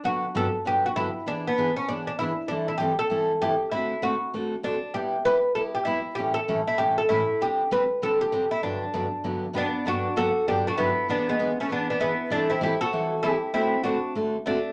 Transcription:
X:1
M:4/4
L:1/8
Q:"Swing" 1/4=196
K:G
V:1 name="Oud"
F2 A2 G F E2 | D B,2 ^C D D E2 | D E G A3 G2 | E2 F2 z2 D2 |
G2 B2 A G E2 | G A2 E G A E2 | G2 B2 A G2 E | D6 [B,D]2 |
[DF]2 [FA]2 [DG] [DF] [B,E]2 | [B,D] [^G,B,]2 [A,^C] [B,D] [B,D] [B,E]2 | [A,D] [CE] [EG] [FA]3 [EG]2 | [CE]2 [DF]2 z2 [A,D]2 |]
V:2 name="Steel-string acoustic guitar"
[G,,D,F,B,DG] z [G,,D,F,B,DG] z [G,,D,F,B,DG] z [G,,D,F,B,DG] z | [E,B,D^G] z [E,B,DG] z [E,B,DG] z [E,B,DG] z | [E,G,CEA] z [E,G,CEA] z [E,G,CEA] z [E,G,CEA] z | [D,A,CFA] z [D,A,CFA] z [D,A,CFA] z [D,A,CFA] z |
[G,B,EG] z [G,B,EG] z [G,B,EG] z [G,B,EG] z | [A,,E,G,^CEA] z [A,,E,G,CEA] z [A,,E,G,CEA] z [A,,E,G,CEA] z | [D,G,CDG] z [D,G,CDG] z [D,G,CDG] z [D,G,CDG] z | [G,,D,F,B,DG] z [G,,D,F,B,DG] z [G,,D,F,B,DG] z [G,,D,F,B,DG] z |
[G,,D,F,B,DG] z [G,,D,F,B,DG] z [G,,D,F,B,DG] z [G,,D,F,B,DG] z | [E,B,D^G] z [E,B,DG] z [E,B,DG] z [E,B,DG] z | [E,G,CEA] z [E,G,CEA] z [E,G,CEA] z [E,G,CEA] z | [D,A,CFA] z [D,A,CFA] z [D,A,CFA] z [D,A,CFA] z |]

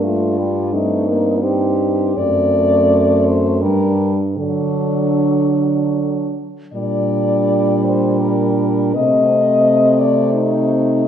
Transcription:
X:1
M:3/4
L:1/8
Q:1/4=82
K:Gm
V:1 name="French horn"
F2 E2 G2 | d3 c B z | A4- A z | d3 c B2 |
e3 d E2 |]
V:2 name="French horn"
D2 C2 E2 | C4 D2 | D4- D z | D6 |
C6 |]
V:3 name="French horn"
A, G, A, B, C2 | A,4 G,2 | ^F,4- F, z | G,6 |
A,6 |]
V:4 name="French horn" clef=bass
G,,6 | ^F,,4 G,,2 | D,4- D, z | B,,6 |
C,6 |]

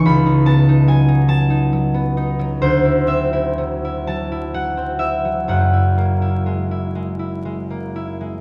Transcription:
X:1
M:6/8
L:1/16
Q:3/8=42
K:F#mix
V:1 name="Harp"
b2 =a2 g2 a6 | =c2 e4 =a2 f2 e2 | f12 |]
V:2 name="Harp"
[C,,B,D] D B, D F, D F, D F, B, D F, | =D,, E =C E F, E F, E F, C E F, | [F,,,F,,] E A, E G, E G, E G, A, E G, |]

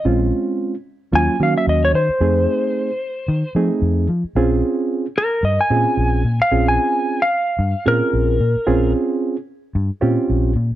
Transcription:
X:1
M:4/4
L:1/16
Q:"Swing 16ths" 1/4=111
K:Bbm
V:1 name="Electric slide guitar"
z8 a2 f =e _e d c2- | c8- c2 z6 | z6 B2 e a6 f- | f a4 f4- f B6- |
B2 z12 z2 |]
V:2 name="Reed electric piano"
[A,CDF]4- [A,CDF] z3 [G,B,DF]2 [G,B,DG]4 z2 | [=A,CE^G]4- [A,CEG] z4 z [A,CEG]4 z2 | [CDFA]4- [CDFA] z4 z [CDFA]4 z2 | [CDFA]4- [CDFA] z4 z [CDFA]4 z2 |
[CDFA]4- [CDFA] z4 z [CDF=G]4 z2 |]
V:3 name="Fingered electric bass" clef=bass
B,,,2 z6 E,, z E, z E,,2 E, z | F,,2 z6 E, z F, z F,,2 F, z | B,,,2 z6 =G,, z B,, z B,,,2 B,, z | B,,,2 z6 =G,, z B,, z B,,,2 B,, z |
B,,,2 z6 =G,, z B,, z B,,,2 B,, z |]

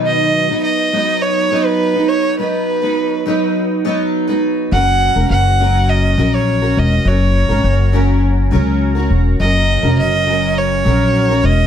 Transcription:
X:1
M:4/4
L:1/16
Q:1/4=103
K:B
V:1 name="Violin"
d4 d4 c3 B3 c2 | B8 z8 | f4 f4 d3 c3 d2 | c8 z8 |
d4 d4 c6 d2 |]
V:2 name="Steel-string acoustic guitar"
[B,,D,F,B,DB]3 [F,B,DB]3 [F,B,DB]4 [F,B,DB]3 [F,B,DB]3 | [F,B,DB]3 [F,B,DB]3 [F,B,DB]4 [F,B,DB]3 [F,B,DB]3 | [F,CFA]3 [CFA]3 [F,CFA]4 [F,CFA]3 [CFA]3 | [F,CFA]3 [CFA]3 [F,CFA]4 [F,CFA]3 [CFA]3 |
[F,CFA]3 [CFA]3 [F,CFA]4 [F,CFA]3 [CFA]3 |]
V:3 name="Upright bass" clef=bass
z16 | z16 | F,,,3 E,,, F,,,6 A,,,4 E,,,2 | F,,,3 G,,, F,,,6 C,,4 E,,,2 |
F,,,3 E,,, F,,,6 A,,,4 E,,,2 |]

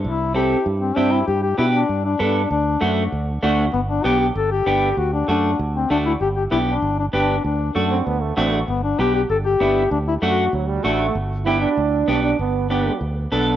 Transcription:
X:1
M:4/4
L:1/16
Q:1/4=194
K:G
V:1 name="Duduk"
E4 G4 z2 C2 D2 E2 | G2 G2 E2 D4 D2 D4 | D4 z12 | B,2 D2 G2 G2 A2 G6 |
F2 D2 D4 z2 C2 D2 E2 | G2 G2 E2 D4 D2 D4 | D4 z12 | B,2 D2 G2 G2 A2 G6 |
D2 E2 F4 z8 | z16 | z16 |]
V:2 name="Clean electric guitar"
z4 [CEA]2 z6 [CEG]2 z2 | z4 [B,DG]2 z6 [B,DA]2 z2 | z4 [A,DF]2 z6 [A,DF]2 z2 | z4 [B,DG]2 z6 [B,DG]2 z2 |
z4 [A,DF]2 z6 [A,DF]2 z2 | z4 [B,DG]2 z6 [B,DG]2 z2 | z4 [A,DF]2 z6 [A,DF]2 z2 | z4 [B,DG]2 z6 [B,DE]2 z2 |
z4 [A,DF]2 z6 [A,DF]2 z2 | z4 [B,DG]2 z6 [B,DG]2 z2 | z4 [B,DG]2 z6 [B,DA]2 z2 |]
V:3 name="Trombone"
z16 | z16 | z16 | z16 |
z16 | z16 | z4 A,2 C2 B,2 A,2 C3 z | z16 |
z8 F,2 G,2 A,4 | z4 E2 D8 D2 | B,4 B,4 z8 |]
V:4 name="Fingered electric bass" clef=bass
C,,8 G,,4 G,,4 | G,,4 B,,4 G,,4 G,,4 | D,,4 F,,4 D,,4 D,,4 | G,,,4 B,,,4 G,,,4 G,,,4 |
D,,4 F,,4 D,,4 D,,4 | G,,,4 B,,,4 G,,,4 G,,,4 | D,,4 F,,4 D,,4 A,,,4 | G,,,4 B,,,4 G,,,4 G,,,4 |
D,,4 F,,4 D,,4 A,,,4 | G,,,8 D,,4 B,,,4 | G,,,8 D,,4 B,,,4 |]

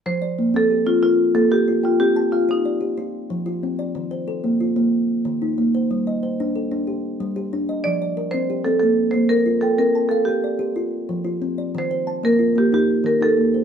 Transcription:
X:1
M:12/8
L:1/8
Q:3/8=123
K:Fmix
V:1 name="Marimba"
c3 A2 F F2 A G2 F | G2 F E4 z4 z | z12 | z12 |
d3 c2 A A2 c B2 A | B2 A G4 z4 z | c3 B2 G G2 B A3 |]
V:2 name="Kalimba"
z d B,2 G2 B3 B2 g- | g a f2 d2 F3 F2 d- | d c A2 F3 z2 E2 c- | c e c2 A2 G3 G2 e- |
e d B2 G2 B,3 B2 g- | g a f2 d2 F3 F2 d- | d c a2 F2 E3 E2 c |]
V:3 name="Kalimba"
F,2 z C2 C z2 B,2 F2 | C2 z G2 G z2 F,2 C2 | E,2 z B,2 B,2 z E,2 B,2 | G,2 z D2 D2 z G,2 D2 |
F,2 z C2 C z2 B,2 F2 | C2 z G2 G z2 F,2 C2 | E,2 z B,2 B,2 z E,2 B,2 |]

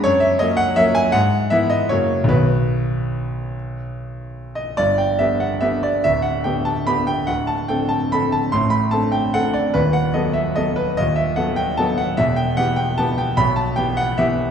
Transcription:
X:1
M:3/4
L:1/8
Q:1/4=148
K:B
V:1 name="Grand piano"
c e d f e g | f2 e d c2 | B6- | B4- B d |
[K:G] d g e f e d | e f g a b g | f a g a b a | c' b a g f d |
B f ^d e d B | ^d e f g a f | e g f g a g | b a g f e z |]
V:2 name="Grand piano"
F,,2 [F,A,C]2 [F,A,C]2 | G,,2 [E,B,E]2 [F,,C,A,F]2 | [B,,,D,B,F]6- | [B,,,D,B,F]6 |
[K:G] [G,,,G,,]2 [D,B,G]2 [D,B,G]2 | [D,,,D,,]2 [D,B,G]2 [D,B,G]2 | [D,,,D,,]2 [D,CA]2 [D,CA]2 | [A,,,A,,]2 [D,CA]2 [D,CA]2 |
[^D,,,^D,,]2 [F,B,A]2 [F,B,A]2 | [^D,,,^D,,]2 [F,B,A]2 [F,B,A]2 | [E,,,E,,]2 [E,B,G]2 [E,B,G]2 | [B,,,B,,]2 [E,B,G]2 [E,B,G]2 |]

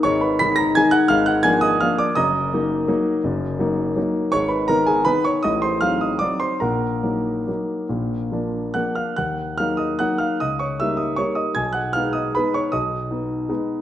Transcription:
X:1
M:3/4
L:1/8
Q:1/4=159
K:Ebm
V:1 name="Grand piano"
[dd'] [cc'] [c'c''] [bb'] [aa'] [gg'] | [ff'] [gg'] [aa'] [ee'] [ff'] [=d=d'] | [ebe']6- | [ebe']4- [ebe'] z |
[dd'] [cc'] [Bb] [Aa] [cc'] [dd'] | [ee'] [=c=c'] [ff'] [ee'] [=d=d'] [cc'] | [Bgb]6- | [Bgb]4 [gg'] [ff'] |
[gg']2 [ff'] [ee'] [gg'] [ff'] | [ee'] [dd'] [_f_f'] [ee'] [dd'] [ee'] | [aa'] [gg'] [ff'] [ee'] [cc'] [dd'] | [ee']3 z3 |]
V:2 name="Grand piano"
[A,,,A,,]2 [E,A,E]2 [E,A,E]2 | [A,,,A,,]2 [F,B,=D]2 [F,B,D]2 | [G,,,G,,]2 [G,B,E]2 [G,B,E]2 | [G,,,G,,]2 [G,B,E]2 [G,B,E]2 |
[A,,,A,,]2 [E,CE]2 [E,CE]2 | [=A,,,=A,,]2 [^F,=CE]2 [F,CE]2 | [B,,,B,,]2 [G,B,E]2 [G,B,E]2 | [B,,,B,,]2 [F,B,=D]2 [F,B,D]2 |
E,,2 [G,B,E]2 [G,B,E]2 | D,,2 [=G,B,E]2 [G,B,E]2 | C,,2 [A,CE]2 [A,CE]2 | C,,2 [CE]2 [A,CE]2 |]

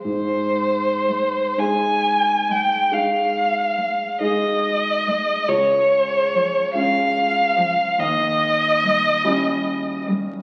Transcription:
X:1
M:12/8
L:1/8
Q:3/8=47
K:Ab
V:1 name="Violin"
c3 a2 g f3 e3 | d3 f3 e4- e z |]
V:2 name="Grand piano"
A,,3 [A,EA]3 [A,EA]3 [A,EA]3 | D,,3 [A,DF]3 E,,3 [G,D_F]3 |]
V:3 name="Cello" clef=bass
z2 A, z2 A, z2 A, z2 A, | z2 F, z2 F, z2 G, z2 G, |]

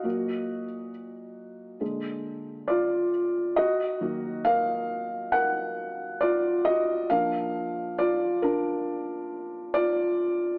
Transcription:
X:1
M:4/4
L:1/8
Q:1/4=68
K:Bbphr
V:1 name="Felt piano"
[^F^d]2 z4 [=F=d]2 | [K:Ebm] [Ge]2 [Bf]2 [Bg]2 [F=d] [Ge] | [Bf]2 [F=d] [=DB]3 [Fd]2 |]
V:2 name="Felt piano" clef=bass
[B,,G,B,] z3 [B,,=D,A,]3 z | [K:Ebm] z [E,G,B,]6- [E,G,B,] | [B,,F,=D]8 |]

